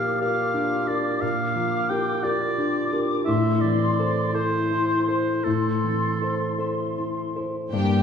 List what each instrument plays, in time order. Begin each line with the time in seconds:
Already playing: grand piano A#2 F3 G4 A#4, harp A#2 A#3 F4 G4, oboe F5, flute section D6
0.21 clarinet F4, grand piano G4 A#4, harp D5, oboe F5, flute section D6
0.54 grand piano D4, harp G4
0.87 harp D4, grand piano G4 A#4, oboe D5
1.21 grand piano A#2, harp A#2, clarinet F4, oboe F5, flute section D6
1.55 grand piano F3, harp A#3
1.89 grand piano G4 A#4, harp G4, oboe G5
2.23 clarinet F4, grand piano G4 A#4, oboe D5, harp D5, flute section D6
2.58 grand piano D4, harp G4
2.93 harp D4, grand piano G4 A#4
3.25 grand piano A2, harp A2, clarinet E4, oboe E5, flute section C6
3.61 grand piano E3, harp C4, oboe D5
3.99 harp A4, grand piano A4 C5
4.33 clarinet E4, grand piano A4 C5, oboe C5, harp E5, flute section C6
4.70 grand piano E4, harp A4
5.07 harp E4, grand piano A4 C5, oboe C5
5.44 grand piano A2, harp A2, clarinet E4, oboe A4, flute section C6
5.84 grand piano E3, harp C4
6.22 grand piano A4 C5, harp A4
6.58 grand piano A4 C5, harp E5
6.98 grand piano E4, harp A4
7.36 harp E4, grand piano A4 C5
7.71 cello section G2, harp G2, grand piano G2, viola section A#3 D4, violin section G4 G5